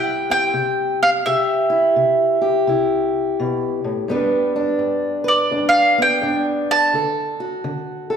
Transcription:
Already playing: steel-string acoustic guitar C3 G3 C4 E4 G4, mandolin G5
0.30 steel-string acoustic guitar C4, mandolin G5
0.54 steel-string acoustic guitar C3
1.03 mandolin F5
1.26 steel-string acoustic guitar C3 G4, mandolin E5
1.70 steel-string acoustic guitar E4
1.96 steel-string acoustic guitar C3
2.42 steel-string acoustic guitar G4
2.67 steel-string acoustic guitar C3 E4
3.40 steel-string acoustic guitar B2
3.84 steel-string acoustic guitar A2
4.08 steel-string acoustic guitar G2 G3 B3 D4 B4
4.56 steel-string acoustic guitar D4
4.79 steel-string acoustic guitar G2
5.24 steel-string acoustic guitar B4
5.28 mandolin D5
5.51 steel-string acoustic guitar G2 D4
5.69 mandolin F5
5.98 steel-string acoustic guitar B3, mandolin G5
6.22 steel-string acoustic guitar G2 D4
6.71 mandolin A5
6.93 steel-string acoustic guitar D3 A4
7.40 steel-string acoustic guitar F#4
7.64 steel-string acoustic guitar D3
8.10 steel-string acoustic guitar A4

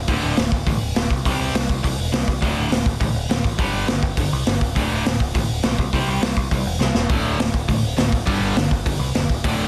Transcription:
0.08 picked electric bass D1, distorted electric guitar D2 A2 D3, kick, open hi-hat
0.23 picked electric bass D1
0.37 picked electric bass D1, distorted electric guitar D2 A2, snare, open hi-hat
0.52 picked electric bass D1, kick
0.67 picked electric bass A1, distorted electric guitar D2 A2, kick, open hi-hat
0.81 picked electric bass D1
0.95 picked electric bass D1, distorted electric guitar D2 A2, snare, open hi-hat
1.11 picked electric bass C2, kick
1.25 picked electric bass C2, distorted electric guitar C3 G3 C4, kick, open hi-hat
1.39 picked electric bass C2
1.54 picked electric bass C2, distorted electric guitar C3 G3, snare, open hi-hat
1.69 picked electric bass C2, kick
1.83 picked electric bass C2, distorted electric guitar C3 G3, kick, open hi-hat
1.99 picked electric bass E1
2.12 picked electric bass C2, distorted electric guitar C3 G3, snare, open hi-hat
2.28 picked electric bass C2, kick
2.41 picked electric bass D1, distorted electric guitar D2 A2 D3, kick, open hi-hat
2.57 picked electric bass D1
2.70 picked electric bass D1, distorted electric guitar D2 A2, snare, open hi-hat
2.86 picked electric bass D1, kick
3.00 picked electric bass A1, distorted electric guitar D2 A2, kick, open hi-hat
3.15 picked electric bass D1
3.29 picked electric bass D1, distorted electric guitar D2 A2, snare, open hi-hat
3.44 picked electric bass A1, kick
3.58 picked electric bass G1, distorted electric guitar G2 D3 G3, kick, open hi-hat
3.73 picked electric bass G1
3.88 picked electric bass G1, distorted electric guitar G2 D3, snare, open hi-hat
4.03 picked electric bass G1, kick
4.17 picked electric bass G1, distorted electric guitar G2 D3, kick, open hi-hat
4.33 picked electric bass C2
4.46 picked electric bass G1, distorted electric guitar G2 D3, snare, open hi-hat
4.61 picked electric bass D1, kick
4.75 picked electric bass D1, distorted electric guitar D2 A2 D3, kick, open hi-hat
4.91 picked electric bass D1
5.05 picked electric bass D1, distorted electric guitar D2 A2, snare, open hi-hat
5.20 picked electric bass D1, kick
5.34 picked electric bass A1, distorted electric guitar D2 A2, kick, open hi-hat
5.49 picked electric bass D1
5.63 picked electric bass B1, distorted electric guitar D2 A2, snare, open hi-hat
5.78 picked electric bass C2, kick
5.93 picked electric bass C2, distorted electric guitar C3 G3 C4, kick, open hi-hat
6.08 picked electric bass C2
6.21 distorted electric guitar C3 G3, snare, open hi-hat
6.37 picked electric bass C2, kick
6.51 picked electric bass C2, distorted electric guitar C3 G3, kick, open hi-hat
6.66 picked electric bass E1
6.79 picked electric bass C2, distorted electric guitar C3 G3, snare
6.95 picked electric bass E1, snare
7.09 picked electric bass D1, distorted electric guitar D2 A2 D3, kick, open hi-hat
7.23 picked electric bass D1
7.38 picked electric bass D1, distorted electric guitar D2 A2, snare, open hi-hat
7.54 picked electric bass D1, kick
7.68 picked electric bass A1, distorted electric guitar D2 A2, kick, open hi-hat
7.83 picked electric bass D1
7.98 picked electric bass D1, distorted electric guitar D2 A2, snare, open hi-hat
8.12 picked electric bass D1, kick
8.27 picked electric bass G1, distorted electric guitar G2 D3 G3, kick, open hi-hat
8.40 picked electric bass G1
8.54 picked electric bass G1, distorted electric guitar G2 D3, snare, open hi-hat
8.71 picked electric bass G1, kick
8.86 picked electric bass G1, distorted electric guitar G2 D3, kick, open hi-hat
8.99 picked electric bass C2
9.15 picked electric bass E1, distorted electric guitar G2 D3, snare, open hi-hat
9.30 picked electric bass D1, kick
9.44 picked electric bass D1, distorted electric guitar D2 A2 D3, kick, open hi-hat
9.58 picked electric bass D1

